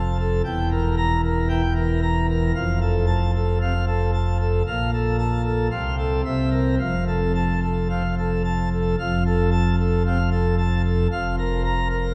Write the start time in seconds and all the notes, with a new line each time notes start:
Already playing: F1 F2 A5
0.19 A4
0.45 E1 E2 G5
0.71 A#4
0.97 A#5
1.24 A#4
1.49 E3 G5
1.76 A#4
2.02 A#5
2.29 A#4
2.55 F1 F2 F5
2.81 A4
3.07 A5
3.35 A4
3.61 C3 F5
3.87 A4
4.14 A5
4.40 A4
4.67 A#1 A#2 F5
4.93 A4
5.18 A5
5.44 A4
5.71 C2 C3 F5
5.98 A4
6.25 C2 C3 E5
6.51 A#4
6.79 F1 F2 F5
7.08 A4
7.35 A5
7.63 A4
7.90 C3 F5
8.18 A4
8.45 A5
8.73 A4
8.99 F1 F2 F5
9.26 A4
9.52 A5
9.79 A4
10.06 C3 F5
10.31 A4
10.58 A5
10.85 A4
11.12 F1 F2 F5
11.39 A#4
11.64 A#5
11.90 A#4